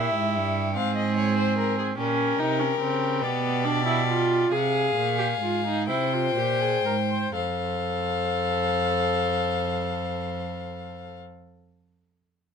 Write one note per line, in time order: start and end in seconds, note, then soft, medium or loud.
0.00 0.15 A#2 medium
0.00 0.74 E4 medium
0.00 0.78 G4 medium
0.00 0.74 E5 medium
0.15 0.37 G#2 medium
0.36 0.78 G2 medium
0.76 1.98 G#2 medium
0.76 1.95 C4 medium
0.76 1.97 G#4 medium
0.76 0.96 F5 medium
0.96 1.16 D#5 medium
1.17 1.37 C#5 medium
1.37 1.57 C5 medium
1.58 1.77 A#4 medium
1.79 1.87 G#4 medium
1.98 2.38 A#2 medium
1.98 2.41 C#4 loud
1.98 4.47 G4 medium
1.98 3.25 A#4 medium
2.39 2.80 C3 medium
2.39 2.61 D#4 medium
2.59 2.80 C#4 medium
2.80 3.24 C#3 medium
2.80 3.23 C4 medium
3.21 4.51 B2 medium
3.21 3.66 B3 loud
3.21 4.51 D5 medium
3.65 3.85 D4 loud
3.86 4.07 E4 medium
4.08 4.53 F4 loud
4.51 4.95 C3 medium
4.51 5.18 G#4 loud
4.51 5.86 G#4 medium
4.51 5.86 F5 medium
4.96 5.41 A#2 medium
5.18 5.26 G4 medium
5.42 5.90 G#2 medium
5.42 5.64 F4 medium
5.65 5.88 D#4 medium
5.88 6.36 C3 medium
5.88 6.14 E4 medium
5.88 7.33 C5 medium
5.88 7.32 G5 medium
6.13 6.38 F4 medium
6.36 6.84 A#2 medium
6.36 6.62 G4 medium
6.61 6.85 G#4 medium
6.85 7.34 G#2 medium
6.85 6.94 A#4 medium
7.11 7.35 C5 medium
7.35 11.17 F2 medium
7.35 11.17 A4 medium
7.35 11.17 C5 medium
7.35 11.17 F5 medium